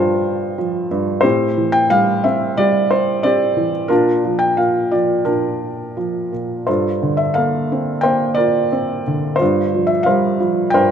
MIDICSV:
0, 0, Header, 1, 2, 480
1, 0, Start_track
1, 0, Tempo, 666667
1, 896, Time_signature, 4, 2, 24, 8
1, 3296, Tempo, 700117
1, 5216, Tempo, 672646
1, 7738, End_track
2, 0, Start_track
2, 0, Title_t, "Felt piano"
2, 0, Program_c, 0, 0
2, 0, Control_c, 0, 64, 127
2, 0, Note_on_c, 0, 43, 48
2, 0, Note_on_c, 0, 53, 50
2, 0, Note_on_c, 0, 65, 50
2, 0, Note_on_c, 0, 70, 58
2, 0, Note_on_c, 0, 72, 69
2, 0, Note_on_c, 0, 77, 67
2, 0, Note_on_c, 0, 79, 81
2, 0, Note_on_c, 0, 81, 77
2, 408, Note_off_c, 0, 53, 0
2, 419, Note_on_c, 0, 53, 52
2, 625, Note_off_c, 0, 72, 0
2, 645, Note_off_c, 0, 43, 0
2, 656, Note_on_c, 0, 43, 49
2, 865, Note_off_c, 0, 65, 0
2, 869, Note_on_c, 0, 72, 86
2, 881, Note_off_c, 0, 53, 0
2, 886, Note_on_c, 0, 67, 63
2, 887, Note_off_c, 0, 43, 0
2, 887, Note_on_c, 0, 60, 62
2, 896, Note_on_c, 0, 45, 64
2, 904, Note_off_c, 0, 77, 0
2, 904, Note_off_c, 0, 79, 0
2, 904, Control_c, 0, 64, 0
2, 906, Note_off_c, 0, 81, 0
2, 911, Note_off_c, 0, 70, 0
2, 1051, Control_c, 0, 64, 127
2, 1133, Note_on_c, 0, 52, 47
2, 1241, Note_on_c, 0, 79, 94
2, 1250, Note_off_c, 0, 72, 0
2, 1369, Note_on_c, 0, 77, 97
2, 1370, Note_off_c, 0, 79, 0
2, 1374, Note_on_c, 0, 55, 55
2, 1606, Note_off_c, 0, 60, 0
2, 1611, Note_on_c, 0, 76, 77
2, 1617, Note_on_c, 0, 60, 51
2, 1619, Note_off_c, 0, 77, 0
2, 1820, Note_off_c, 0, 67, 0
2, 1847, Note_off_c, 0, 55, 0
2, 1854, Note_on_c, 0, 74, 90
2, 1857, Note_on_c, 0, 55, 51
2, 1860, Note_off_c, 0, 76, 0
2, 1867, Note_on_c, 0, 67, 64
2, 2065, Note_off_c, 0, 52, 0
2, 2092, Note_on_c, 0, 72, 77
2, 2101, Note_off_c, 0, 74, 0
2, 2323, Note_off_c, 0, 60, 0
2, 2327, Note_on_c, 0, 74, 86
2, 2333, Note_on_c, 0, 60, 58
2, 2338, Note_off_c, 0, 67, 0
2, 2338, Note_off_c, 0, 72, 0
2, 2349, Note_on_c, 0, 67, 61
2, 2568, Note_on_c, 0, 52, 46
2, 2663, Note_off_c, 0, 74, 0
2, 2783, Note_off_c, 0, 45, 0
2, 2785, Note_off_c, 0, 55, 0
2, 2792, Note_off_c, 0, 67, 0
2, 2795, Note_on_c, 0, 70, 73
2, 2798, Note_off_c, 0, 60, 0
2, 2803, Note_off_c, 0, 52, 0
2, 2805, Note_on_c, 0, 65, 59
2, 2810, Note_on_c, 0, 46, 58
2, 2810, Note_on_c, 0, 62, 54
2, 2822, Control_c, 0, 64, 0
2, 2926, Control_c, 0, 64, 127
2, 3056, Note_on_c, 0, 53, 44
2, 3142, Note_off_c, 0, 70, 0
2, 3159, Note_on_c, 0, 79, 79
2, 3286, Note_off_c, 0, 46, 0
2, 3291, Note_on_c, 0, 77, 69
2, 3293, Note_off_c, 0, 79, 0
2, 3296, Note_on_c, 0, 46, 47
2, 3518, Note_off_c, 0, 53, 0
2, 3527, Note_on_c, 0, 74, 65
2, 3529, Note_on_c, 0, 53, 45
2, 3535, Note_off_c, 0, 77, 0
2, 3736, Note_off_c, 0, 65, 0
2, 3738, Note_off_c, 0, 62, 0
2, 3746, Note_off_c, 0, 46, 0
2, 3755, Note_on_c, 0, 65, 39
2, 3755, Note_on_c, 0, 70, 57
2, 3756, Note_on_c, 0, 62, 41
2, 3757, Note_on_c, 0, 46, 43
2, 3772, Note_off_c, 0, 74, 0
2, 4239, Note_off_c, 0, 53, 0
2, 4249, Note_on_c, 0, 53, 46
2, 4467, Note_off_c, 0, 70, 0
2, 4483, Note_off_c, 0, 46, 0
2, 4493, Note_on_c, 0, 46, 37
2, 4708, Note_off_c, 0, 62, 0
2, 4708, Note_off_c, 0, 65, 0
2, 4724, Note_off_c, 0, 53, 0
2, 4728, Note_on_c, 0, 72, 61
2, 4729, Note_on_c, 0, 65, 48
2, 4730, Note_off_c, 0, 46, 0
2, 4738, Note_on_c, 0, 69, 43
2, 4740, Note_on_c, 0, 43, 52
2, 4750, Control_c, 0, 64, 0
2, 4858, Control_c, 0, 64, 127
2, 4974, Note_on_c, 0, 50, 41
2, 5074, Note_on_c, 0, 76, 69
2, 5103, Note_off_c, 0, 72, 0
2, 5187, Note_off_c, 0, 69, 0
2, 5190, Note_on_c, 0, 77, 77
2, 5198, Note_on_c, 0, 69, 48
2, 5200, Note_on_c, 0, 70, 51
2, 5210, Note_off_c, 0, 76, 0
2, 5215, Note_on_c, 0, 58, 45
2, 5459, Note_on_c, 0, 60, 44
2, 5666, Note_off_c, 0, 65, 0
2, 5668, Note_on_c, 0, 79, 78
2, 5673, Note_off_c, 0, 70, 0
2, 5683, Note_off_c, 0, 58, 0
2, 5683, Note_on_c, 0, 70, 57
2, 5684, Note_on_c, 0, 72, 62
2, 5694, Note_on_c, 0, 58, 47
2, 5701, Note_off_c, 0, 77, 0
2, 5906, Note_off_c, 0, 50, 0
2, 5906, Note_on_c, 0, 74, 84
2, 5911, Note_off_c, 0, 70, 0
2, 5921, Note_on_c, 0, 70, 52
2, 5928, Note_off_c, 0, 79, 0
2, 5928, Note_on_c, 0, 65, 52
2, 6140, Note_off_c, 0, 69, 0
2, 6163, Note_off_c, 0, 60, 0
2, 6174, Note_on_c, 0, 60, 52
2, 6379, Note_off_c, 0, 74, 0
2, 6426, Note_on_c, 0, 50, 46
2, 6618, Note_off_c, 0, 72, 0
2, 6627, Note_off_c, 0, 70, 0
2, 6629, Note_on_c, 0, 72, 73
2, 6630, Note_off_c, 0, 65, 0
2, 6631, Note_off_c, 0, 58, 0
2, 6634, Note_off_c, 0, 43, 0
2, 6646, Note_off_c, 0, 60, 0
2, 6646, Note_on_c, 0, 65, 51
2, 6658, Note_off_c, 0, 50, 0
2, 6669, Note_on_c, 0, 43, 60
2, 6672, Control_c, 0, 64, 0
2, 6792, Control_c, 0, 64, 127
2, 6906, Note_on_c, 0, 53, 44
2, 6992, Note_on_c, 0, 76, 76
2, 7016, Note_off_c, 0, 72, 0
2, 7109, Note_on_c, 0, 77, 82
2, 7130, Note_off_c, 0, 76, 0
2, 7131, Note_on_c, 0, 70, 57
2, 7132, Note_on_c, 0, 72, 57
2, 7142, Note_on_c, 0, 55, 51
2, 7362, Note_off_c, 0, 53, 0
2, 7373, Note_on_c, 0, 53, 54
2, 7581, Note_off_c, 0, 65, 0
2, 7589, Note_on_c, 0, 79, 90
2, 7605, Note_off_c, 0, 43, 0
2, 7606, Note_off_c, 0, 72, 0
2, 7607, Note_off_c, 0, 70, 0
2, 7616, Note_on_c, 0, 43, 56
2, 7616, Note_on_c, 0, 72, 68
2, 7618, Note_off_c, 0, 77, 0
2, 7618, Note_on_c, 0, 70, 69
2, 7738, Note_off_c, 0, 43, 0
2, 7738, Note_off_c, 0, 53, 0
2, 7738, Note_off_c, 0, 55, 0
2, 7738, Note_off_c, 0, 70, 0
2, 7738, Note_off_c, 0, 72, 0
2, 7738, Note_off_c, 0, 79, 0
2, 7738, End_track
0, 0, End_of_file